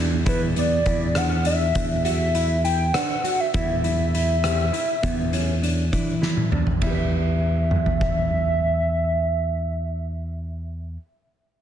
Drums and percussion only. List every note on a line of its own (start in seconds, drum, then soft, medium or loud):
0.26 kick medium
0.26 closed hi-hat medium
0.56 closed hi-hat soft
0.86 kick medium
0.86 closed hi-hat medium
1.15 cross-stick medium
1.15 closed hi-hat medium
1.45 closed hi-hat medium
1.75 kick medium
1.75 closed hi-hat medium
2.05 closed hi-hat medium
2.35 closed hi-hat soft
2.65 closed hi-hat soft
2.94 cross-stick medium
2.94 closed hi-hat medium
3.25 closed hi-hat soft
3.54 kick medium
3.54 closed hi-hat medium
3.84 closed hi-hat soft
4.15 closed hi-hat soft
4.44 cross-stick medium
4.44 closed hi-hat medium
4.74 closed hi-hat soft
5.03 kick medium
5.03 closed hi-hat medium
5.33 closed hi-hat medium
5.63 closed hi-hat soft
5.93 kick medium
5.93 closed hi-hat soft
6.23 snare soft
6.37 high tom soft
6.52 mid tom medium
6.67 floor tom medium
6.82 kick soft
6.82 ride medium
7.71 mid tom soft
7.86 floor tom soft
8.01 kick medium